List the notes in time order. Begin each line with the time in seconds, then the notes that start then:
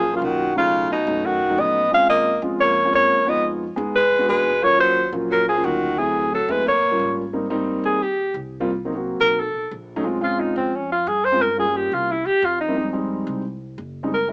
Already playing: A#1 F3 G#4
0.13 C#3 F#3 A#3 C#4 F4
0.22 B1 D#3 F#4
0.56 C#3 F#3 A3 C#4 D#4 F4
0.90 B2 D#4
1.07 F#2 F#3 A3 C#4 D#4
1.25 D#3 F#4
1.50 F#3 A3 C#4 D#4
1.58 A#1 B3 D#5
1.91 G#3 C4 C#4 F4 F5
2.09 A#3 D#5
2.42 F2 G#3 C4 C#4 F4
2.60 A#3 C#5
2.85 G#3 C4 C#4 F4
2.92 F2 A#3 C#5
3.26 G#3 B3 D#4 F4 D#5
3.76 E2 G#3 B3 D#4 G#4
3.95 G#3 B4
4.12 E2
4.18 G#3 B3 D4 F#4
4.28 D#2 G#3 B4
4.62 F#3 A#3 C#4 F4 C#5
4.79 F#3 C5
5.12 A#1 F#3 A#3 C#4 F4
5.30 F#3 A#4
5.48 F3 G#4
5.56 F#3 A#3 C#4 F4
5.64 D2 D#3 F#4
5.98 E3 F#3 A3 C4 E4 G#4
6.32 F#3 A4
6.48 D#2 F#3 G#3 A3 C4 E4 B4
6.66 A#3 C#5
6.82 A#1
6.91 G3 A#3 C#4 F4
6.99 G#1
7.33 G3 A#3 C4 D#4
7.50 G3 A#3 C4 D#4
7.84 D#2 G#4
8.02 G4
8.34 C2
8.60 G3 A#3 C4 F4
8.85 F#3 A#3 C4 D#4
8.94 F#3 A#3 C4 F#4
9.20 B1 A#4
9.40 A4
9.54 B1
9.71 A#1
9.96 F#3 A3 C#4 D#4
10.04 G#3 C4 C#4 F4
10.21 G#3 C4 C#4 F4
10.39 D#4
10.56 F2 C4
10.76 C#4
10.92 F4
11.07 G2 G#4
11.24 C5
11.32 G#3 C4 C#4 F4
11.41 A#4
11.58 G3 A#3 C#4 F4 G#4
11.66 G3 A#3 C#4 F4
11.76 G4
11.92 C2 F4
12.11 E4
12.25 E2 G4
12.42 F2 F4
12.60 D#4
12.68 G3 A#3 C4 E4
12.76 G3 G#3 C4 D#4
12.93 G3 G#3 C4 D#4
13.27 C2
13.78 F#1
14.03 G3 G#3 C4 D#4
14.14 A#4
14.28 G#3 A#3 C#4 E4